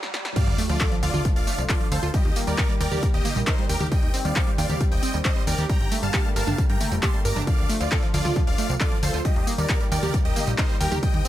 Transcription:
Already playing: riser
0.03 snare
0.14 G3, snare
0.25 snare
0.36 D3 F3 A3 F4 D5 F5, kick, closed hi-hat, tambourine, crash, sub drop
0.47 D2, closed hi-hat
0.58 A3, open hi-hat, tambourine
0.69 D2 F3 F4 D5, closed hi-hat, tambourine
0.80 A4, kick, clap, closed hi-hat, tambourine
0.92 F3, closed hi-hat
1.03 D2 F4 D5 F5, open hi-hat, tambourine
1.14 D2 F4, closed hi-hat, mid tom, tambourine
1.25 F3, kick, closed hi-hat, tambourine
1.36 D1 D5 F5, open hi-hat
1.47 A3, open hi-hat, tambourine
1.58 C2 F3, closed hi-hat, tambourine
1.69 F4 A4 D5, kick, clap, closed hi-hat, tambourine
1.81 F3, closed hi-hat
1.92 D2 A4 C5 F5, open hi-hat, tambourine
2.03 D2 F4, closed hi-hat, tambourine
2.14 D#3 G3 A#3 G4 D#5, kick, closed hi-hat, tambourine
2.25 D#2, closed hi-hat
2.36 A#3, open hi-hat, tambourine
2.47 D#2 G3 A#4 D5, tambourine
2.58 A#4, kick, clap, closed hi-hat, tambourine
2.69 G3, closed hi-hat
2.81 D#2 A#4 D5 G5, open hi-hat, tambourine
2.92 D#2 G4, closed hi-hat, mid tom, tambourine
3.03 G3, kick, closed hi-hat, tambourine
3.14 D#1 G4 D#5, closed hi-hat
3.25 A#3, open hi-hat, mid tom, tambourine
3.36 A#1 G3, closed hi-hat, tambourine
3.47 D#4 A#4 C5, kick, clap, closed hi-hat, tambourine
3.58 G3, closed hi-hat
3.69 D#2 G4 A#4 G5, open hi-hat, tambourine
3.80 D#2 G4, closed hi-hat, mid tom, tambourine
3.92 G3 C4 D#5 G5, kick, closed hi-hat, tambourine
4.03 D#2, closed hi-hat
4.14 C4, open hi-hat, tambourine
4.25 D#2 G3 D5 F5, closed hi-hat, tambourine
4.36 C5, kick, clap, closed hi-hat, tambourine
4.47 G3, closed hi-hat
4.58 D#2 D5 F5 G5, open hi-hat, tambourine
4.69 D#2 G4, closed hi-hat, mid tom, tambourine
4.80 G3, kick, closed hi-hat, tambourine
4.92 D#1 D#5 G5, open hi-hat
5.03 C4, open hi-hat, tambourine
5.14 D#2 G3, closed hi-hat, tambourine
5.25 C5 D#5, kick, clap, closed hi-hat, tambourine
5.36 G3, closed hi-hat
5.47 D#2 A#4 D5 G5, open hi-hat, tambourine
5.58 D#2 G4, closed hi-hat, tambourine
5.69 D3 G3 A3 A#3 G5 A#5, kick, closed hi-hat, tambourine
5.81 G1, closed hi-hat
5.92 A3, open hi-hat, tambourine
6.03 G1 G3 F5 A5, closed hi-hat, tambourine
6.14 G4, kick, clap, closed hi-hat, tambourine
6.25 G3, closed hi-hat
6.36 G1 A#4 F5 A5, open hi-hat, tambourine
6.47 G1 D4, closed hi-hat, mid tom, tambourine
6.58 G3, kick, closed hi-hat, tambourine
6.69 G2 G5 A#5, closed hi-hat
6.81 A3, open hi-hat, mid tom, tambourine
6.92 F1 G3, closed hi-hat, tambourine
7.03 G4 A5 C6, kick, clap, closed hi-hat, tambourine
7.14 G3, closed hi-hat
7.25 G1 A#4 A#5 D6, open hi-hat, tambourine
7.36 G1 D4, closed hi-hat, mid tom, tambourine
7.47 F3 F4 D5 F5, kick, closed hi-hat, tambourine
7.58 D2, closed hi-hat
7.69 A3, open hi-hat, tambourine
7.81 D2 F3 F4 D5, closed hi-hat, tambourine
7.92 A4, kick, clap, closed hi-hat, tambourine
8.03 F3, closed hi-hat
8.14 D2 F4 D5 F5, open hi-hat, tambourine
8.25 D2 F4, closed hi-hat, mid tom, tambourine
8.36 F3, kick, closed hi-hat, tambourine
8.47 D1 D5 F5, open hi-hat
8.58 A3, open hi-hat, tambourine
8.69 C2 F3, closed hi-hat, tambourine
8.81 F4 A4 D5, kick, clap, closed hi-hat, tambourine
8.92 F3, closed hi-hat
9.03 D2 A4 C5 F5, open hi-hat, tambourine
9.14 D2 F4, closed hi-hat, tambourine
9.25 D#3 G3 A#3 G4 D#5, kick, closed hi-hat, tambourine
9.36 D#2, closed hi-hat
9.47 A#3, open hi-hat, tambourine
9.58 D#2 G3 A#4 D5, tambourine
9.69 A#4, kick, clap, closed hi-hat, tambourine
9.81 G3, closed hi-hat
9.92 D#2 A#4 D5 G5, open hi-hat, tambourine
10.03 D#2 G4, closed hi-hat, mid tom, tambourine
10.14 G3, kick, closed hi-hat, tambourine
10.25 D#1 G4 D#5, closed hi-hat
10.36 A#3, open hi-hat, mid tom, tambourine
10.47 A#1 G3, closed hi-hat, tambourine
10.58 D#4 A#4 C5, kick, clap, closed hi-hat, tambourine
10.69 G3, closed hi-hat
10.80 D#2 G4 A#4 G5, open hi-hat, tambourine
10.92 D#2 G4, closed hi-hat, mid tom, tambourine
11.03 G3 C4 D#5 G5, kick, closed hi-hat, tambourine
11.14 D#2, closed hi-hat
11.25 C4, open hi-hat, tambourine

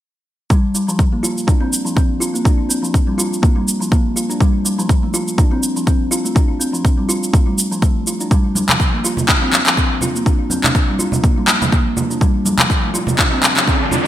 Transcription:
0.50 G3, kick, shaker
0.75 G3, shaker
0.88 F3, shaker
0.99 kick, shaker
1.13 A#3
1.23 F4, shaker
1.38 shaker
1.47 D4, kick, shaker
1.61 C4
1.73 shaker
1.85 F3, shaker
1.96 C4, kick, shaker
2.20 F4, shaker
2.34 A#3, shaker
2.45 D4, kick, shaker
2.69 C4, shaker
2.83 F3, shaker
2.94 kick, shaker
3.07 G3
3.18 F4, shaker
3.33 shaker
3.42 A#3, kick, shaker
3.56 G3
3.68 shaker
3.80 F3, shaker
3.91 A#3, kick, shaker
4.16 F4, shaker
4.30 D4, shaker
4.40 G3, kick, shaker
4.65 G3, shaker
4.78 F3, shaker
4.89 kick, shaker
5.03 A3
5.14 F4, shaker
5.28 shaker
5.38 D4, kick, shaker
5.51 C4
5.63 shaker
5.76 F3, shaker
5.86 C4, kick, shaker
6.11 F4, shaker
6.25 A3, shaker
6.35 D4, kick, shaker
6.60 C4, shaker
6.73 F3, shaker
6.85 kick, shaker
6.98 G3
7.09 F4, shaker
7.23 shaker
7.33 A3, kick, shaker
7.47 G3
7.58 shaker
7.71 F3, shaker
7.82 A3, kick, shaker
8.07 F4, shaker
8.20 D4, shaker
8.31 G3, kick, shaker
8.55 G3, high conga, shaker
8.69 F3, clap, low conga, shaker
8.80 kick, shaker
8.94 A#3
9.04 F4, shaker
9.17 low conga, shaker
9.29 D4, kick, clap, shaker
9.42 C4
9.53 clap, high conga, shaker
9.67 F3, clap, shaker
9.77 C4, kick, shaker
10.01 F4, high conga, low conga, shaker
10.16 A#3, shaker
10.26 D4, kick, shaker
10.50 C4, high conga, shaker
10.64 D4, clap, low conga, shaker
10.75 kick, shaker
10.89 G3
10.99 F4, high conga, shaker
11.12 low conga, shaker
11.23 A#3, kick, high conga, shaker
11.38 G3
11.48 clap, high conga, shaker
11.61 F3, high conga, low conga, shaker
11.72 A#3, kick, shaker
11.97 F4, high conga, low conga, shaker
12.10 D4, shaker
12.21 G3, kick, riser, shaker
12.45 G3, high conga, shaker
12.58 F3, clap, low conga, shaker
12.70 kick, shaker
12.84 A3
12.94 F4, shaker
13.07 low conga, shaker
13.19 D4, kick, clap, shaker
13.32 C4
13.43 clap, high conga, shaker
13.57 F3, clap, shaker
13.67 C4, kick, shaker
13.91 F4, high conga, low conga, shaker

